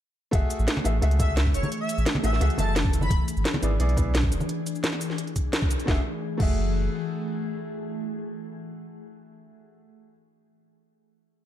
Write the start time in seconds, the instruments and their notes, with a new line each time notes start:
0.31 sub bass F#1, ambient pad E3 A3 G#4, grand piano A3 F#4 G#4 E5, kick, closed hi-hat
0.50 closed hi-hat, cabasa
0.59 sub bass A1, cabasa
0.68 snare, closed hi-hat
0.77 snare, high conga
0.84 sub bass A1, grand piano A3 F#4 G#4 E5, closed hi-hat, cabasa
1.01 sub bass C#2, grand piano A3 F#4 G#4 E5, closed hi-hat
1.11 closed hi-hat
1.19 grand piano A3 F#4 G#4 E5, digital synth lead E5, kick, closed hi-hat, high conga, cabasa
1.37 snare, closed hi-hat
1.46 kick
1.54 sub bass F#1, digital synth lead C#5, closed hi-hat, cabasa
1.63 digital synth lead C#5, high conga, cabasa
1.72 closed hi-hat
1.81 digital synth lead E5
1.89 closed hi-hat, cabasa
1.98 sub bass A1, cabasa
2.06 snare, closed hi-hat
2.15 snare, high conga
2.23 sub bass A1, grand piano A3 F#4 G#4 E5, digital synth lead E5, open hi-hat, cabasa
2.33 snare
2.40 sub bass C#2, grand piano A3 F#4 G#4 E5, closed hi-hat
2.50 closed hi-hat
2.58 sub bass F#1, grand piano A3 F#4 G#4 E5, digital synth lead A5, closed hi-hat, high conga, cabasa
2.76 snare, closed hi-hat
2.85 kick
2.93 closed hi-hat, cabasa
3.01 digital synth lead B5, high conga, cabasa
3.10 sub bass E1, ambient pad D4 G#4, kick, closed hi-hat
3.28 closed hi-hat, cabasa
3.37 sub bass G#1, cabasa
3.45 snare, closed hi-hat
3.54 snare, high conga
3.62 sub bass G#1, grand piano B3 E4 G#4 D5, closed hi-hat, cabasa
3.79 sub bass B1, grand piano B3 E4 G#4 D5, closed hi-hat
3.89 closed hi-hat
3.96 grand piano B3 E4 G#4 D5, kick, closed hi-hat, high conga, cabasa
4.15 snare, closed hi-hat
4.23 kick
4.32 sub bass E1, closed hi-hat, cabasa
4.40 high conga, cabasa
4.49 closed hi-hat
4.67 closed hi-hat, cabasa
4.75 cabasa
4.84 snare, closed hi-hat
4.93 snare
5.01 open hi-hat, cabasa
5.10 snare
5.18 closed hi-hat
5.27 closed hi-hat
5.36 kick, closed hi-hat, cabasa
5.53 snare, closed hi-hat
5.62 kick
5.71 closed hi-hat, cabasa
5.80 closed hi-hat, cabasa
5.85 sub bass F#1, ambient pad E3 A3 G#4, grand piano A3 F#4 G#4, kick, snare
5.90 grand piano E5
6.37 sub bass F#1, grand piano A3 F#4 G#4, kick, crash
6.42 grand piano E5